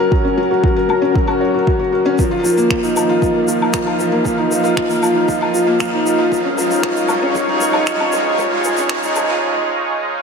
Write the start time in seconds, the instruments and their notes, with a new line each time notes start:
Already playing: felt piano F#3 C#4 F#4, analog synth pad C#4 A#4 F#5, riser
0.00 felt piano A#4
0.11 felt piano F#3, kick
0.25 felt piano C#4
0.38 felt piano F#3
0.51 felt piano F#4
0.64 felt piano F#3, kick
0.76 felt piano A#4
0.89 felt piano F#3, low woodblock
1.02 felt piano C#4
1.14 felt piano F#3, kick
1.27 felt piano F#4, low woodblock
1.41 felt piano C#5
1.54 felt piano F#4
1.67 felt piano F#3, kick
1.79 felt piano F#4
1.92 felt piano F#4
2.06 felt piano C#4
2.19 felt piano F3, kick, shaker
2.23 analog synth pad D#4
2.31 felt piano F4
2.44 felt piano F3, shaker
2.52 analog synth pad F5
2.57 felt piano A#3, shaker
2.70 felt piano F3, finger snap, kick
2.83 felt piano D#4, shaker
2.96 felt piano F3, low woodblock, shaker
3.09 felt piano F4
3.22 felt piano F3, kick, shaker
3.35 felt piano A#3
3.48 felt piano F3, shaker
3.61 felt piano D#4, low woodblock
3.74 felt piano F3, finger snap, kick, shaker
3.86 felt piano F4, low woodblock
3.99 felt piano F3, shaker
4.12 felt piano A#3
4.24 felt piano F3, kick, shaker
4.38 felt piano D#4
4.51 felt piano F3, shaker
4.64 felt piano F4, shaker
4.77 finger snap, kick
4.89 felt piano A#3, shaker
5.02 felt piano F3, low woodblock, shaker
5.15 felt piano D#4
5.28 felt piano F3, kick, shaker
5.41 felt piano F4, low woodblock
5.54 felt piano F3, shaker
5.67 felt piano A#3
5.80 felt piano F3, finger snap, kick, shaker
5.93 felt piano D#4
6.06 felt piano F3, shaker
6.18 felt piano F4
6.31 felt piano F3, analog synth pad G#3, kick, shaker
6.45 felt piano C#4
6.56 felt piano F3, analog synth pad C#5, shaker
6.70 felt piano D#4, shaker
6.83 felt piano F3, finger snap, kick
6.96 felt piano F4, shaker
7.08 felt piano F3, low woodblock, shaker
7.23 felt piano C#4
7.35 felt piano F3, kick, shaker
7.49 felt piano D#4
7.61 felt piano F3, shaker
7.73 felt piano F4, low woodblock
7.87 felt piano F3, finger snap, kick, shaker
8.00 felt piano C#4, low woodblock
8.12 felt piano F3, shaker
8.26 felt piano D#4
8.39 felt piano F3, kick, shaker
8.52 felt piano F4
8.64 felt piano F3, shaker
8.77 felt piano C#4, shaker
8.89 felt piano F3, finger snap, kick
9.03 felt piano D#4, shaker
9.16 felt piano F3, low woodblock, shaker
9.30 felt piano F4